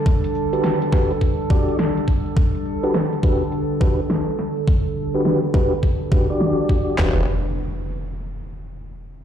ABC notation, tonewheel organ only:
X:1
M:4/4
L:1/16
Q:"Swing 16ths" 1/4=104
K:Em
V:1 name="Tonewheel organ"
z3 [DFGB]2 z [DFGB] z3 [DFGd]2 z4 | z3 [DFGB] z2 [DFGB] z3 [DFGB] z4 z | z3 [DFGB]2 z [DFGB] z3 [DFGB] [DFGd]4- [DFGd] | [DFGB]2 z12 z2 |]